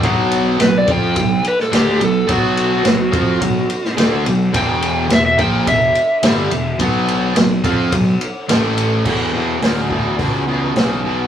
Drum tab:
CC |----------------|----------------|----------------|----------------|
RD |x-x-x-x-x-x-x-x-|x-x-x-x-x-x-x-x-|x-x-x-x-x-x-x-x-|x-x-x-x-x-x-x-x-|
HH |----------------|----------------|----------------|----------------|
SD |----o------oo---|----o------oo---|----o-------o---|----o-------o---|
BD |o-----o-o-------|o-----o-o-------|o-----o-o-------|o-----o-o-------|

CC |x---------------|
RD |----------------|
HH |----o---o---o---|
SD |----o-------o---|
BD |o-----o-o-------|